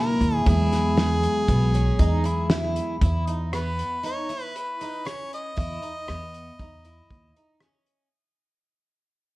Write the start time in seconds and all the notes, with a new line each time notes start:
Already playing: B2 F#3 G#3 A#3 D#4 E4 A#4
0.21 D#2, closed hi-hat
0.35 G#4
0.45 E2 E3 F#3 G#3 B3 E4 G#4, kick, closed hi-hat
0.72 snare, closed hi-hat
0.97 G#4, snare, closed hi-hat
1.23 closed hi-hat
1.48 B1 B3, kick, closed hi-hat
1.74 C#4, closed hi-hat
1.99 E2 D#4, kick, closed hi-hat
2.24 E4 B5, closed hi-hat
2.50 E4 E5, snare, closed hi-hat
2.76 closed hi-hat
3.01 E2 E4, kick, closed hi-hat
3.27 D#4, closed hi-hat
3.53 B3 B4, cross-stick, closed hi-hat
3.79 closed hi-hat
4.04 D#4 C#5, closed hi-hat
4.29 E4, closed hi-hat
4.44 B4
4.56 B4, closed hi-hat
4.81 D#4, closed hi-hat
5.05 C#4 C#5, cross-stick, closed hi-hat
5.33 D#5, closed hi-hat
5.57 E2 E4, kick, closed hi-hat
5.82 D#4, closed hi-hat
6.08 E2 B3, cross-stick, closed hi-hat
6.34 closed hi-hat
6.59 E2 D#4, kick, closed hi-hat
6.85 E4, closed hi-hat
7.10 D#2, kick, closed hi-hat
7.36 D#4, closed hi-hat
7.61 C#4, cross-stick, closed hi-hat
7.87 closed hi-hat